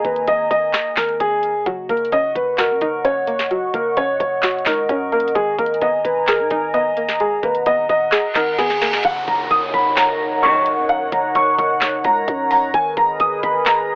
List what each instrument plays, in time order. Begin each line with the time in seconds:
Already playing: analog synth pad A#3 D#5 G#5 A#5
0.05 808-style bass G#1, grand piano B4, kick, closed hi-hat
0.16 closed hi-hat
0.28 808-style bass G#1, grand piano D#5, kick, closed hi-hat
0.51 808-style bass G#1, grand piano D#5, kick, closed hi-hat
0.73 snare, clap, closed hi-hat
0.96 808-style bass G#1, grand piano A#4, kick, snare, clap, closed hi-hat
1.09 closed hi-hat
1.20 808-style bass G#1, grand piano G#4, kick, closed hi-hat
1.43 closed hi-hat
1.55 808-style bass F#1
1.66 808-style bass F#1, synth pluck F#3, grand piano F#4, analog synth pad D#5 F#5 C#6, kick, closed hi-hat
1.89 808-style bass F#1, synth pluck A#3, grand piano A#4, kick, closed hi-hat
1.97 closed hi-hat
2.05 closed hi-hat
2.12 808-style bass F#1, synth pluck C#4, grand piano D#5, kick, closed hi-hat
2.35 808-style bass F#1, grand piano B4, kick, closed hi-hat
2.58 synth pluck F#4, grand piano A#4, snare, clap, closed hi-hat
2.70 808-style bass F#2
2.81 808-style bass F#1, synth pluck D#4, kick, closed hi-hat
3.04 synth pluck C#4, grand piano C#5, closed hi-hat
3.27 synth pluck A#3, closed hi-hat
3.39 snare
3.51 synth pluck F#3, grand piano F#4, closed hi-hat
3.74 808-style bass F#1, synth pluck A#3, grand piano A#4, kick, closed hi-hat
3.97 808-style bass F#1, synth pluck C#4, grand piano C#5, kick, closed hi-hat
4.20 808-style bass F#1, grand piano C#5, kick, closed hi-hat
4.43 synth pluck F#4, snare, clap, closed hi-hat
4.51 closed hi-hat
4.59 closed hi-hat
4.66 808-style bass C#2, synth pluck D#4, grand piano A#4, kick, snare, clap, closed hi-hat
4.89 808-style bass F#2, synth pluck C#4, kick, closed hi-hat
5.12 synth pluck A#3, grand piano A#4, closed hi-hat
5.20 closed hi-hat
5.28 closed hi-hat
5.35 808-style bass G#1, synth pluck G#3, grand piano G#4, analog synth pad G#5 A#5, kick, closed hi-hat
5.58 808-style bass G#1, synth pluck A#3, grand piano A#4, kick, closed hi-hat
5.66 closed hi-hat
5.74 closed hi-hat
5.81 808-style bass G#1, synth pluck B3, grand piano D#5, kick, closed hi-hat
6.05 808-style bass G#1, grand piano B4, kick, closed hi-hat
6.27 synth pluck G#4, grand piano A#4, snare, clap, closed hi-hat
6.39 808-style bass G#2
6.51 808-style bass G#1, synth pluck D#4, kick, closed hi-hat
6.74 synth pluck B3, grand piano D#5, closed hi-hat
6.97 synth pluck A#3, closed hi-hat
7.09 snare
7.20 synth pluck G#3, grand piano G#4, analog synth pad F#5, closed hi-hat
7.43 808-style bass G#1, synth pluck A#3, grand piano B4, kick, closed hi-hat
7.55 closed hi-hat
7.66 808-style bass G#1, synth pluck B3, grand piano D#5, kick, closed hi-hat
7.89 808-style bass G#1, grand piano D#5, kick, closed hi-hat
8.12 synth pluck G#4, snare, clap, closed hi-hat, reverse cymbal
8.35 808-style bass G#1, synth pluck D#4, grand piano A#4, kick, snare, clap, closed hi-hat
8.47 closed hi-hat
8.58 808-style bass G#1, synth pluck B3, grand piano G#4, kick, snare, closed hi-hat
8.70 snare
8.81 synth pluck A#3, snare, closed hi-hat
8.93 808-style bass F#1, snare
9.05 808-style bass F#1, analog synth pad D#4 A#4 C#5 F#5, grand piano F#5, kick, closed hi-hat, crash, downlifter
9.28 808-style bass F#1, grand piano A#5, kick, closed hi-hat
9.51 808-style bass F#1, grand piano D#6, kick, closed hi-hat
9.74 808-style bass F#1, grand piano B5, kick, closed hi-hat
9.96 grand piano A#5, snare, clap, closed hi-hat
10.43 string section A#1 F#2 D#3, grand piano C#6, closed hi-hat
10.66 closed hi-hat
10.78 808-style bass F#2
10.89 grand piano F#5, closed hi-hat
11.12 808-style bass F#1, grand piano A#5, kick, closed hi-hat
11.35 808-style bass F#1, grand piano C#6, kick, closed hi-hat
11.59 808-style bass F#1, grand piano C#6, kick, closed hi-hat
11.81 snare, clap, closed hi-hat
12.04 808-style bass C#2, grand piano A#5, kick, closed hi-hat
12.28 808-style bass F#2, kick, closed hi-hat
12.51 grand piano A#5, open hi-hat
12.74 808-style bass G#1, analog synth pad G#4 A#4 B4 D#5, grand piano G#5, kick, closed hi-hat
12.97 808-style bass G#1, grand piano A#5, kick, closed hi-hat
13.20 808-style bass G#1, grand piano D#6, kick, closed hi-hat
13.43 808-style bass G#1, grand piano B5, kick, closed hi-hat
13.66 grand piano A#5, snare, clap, closed hi-hat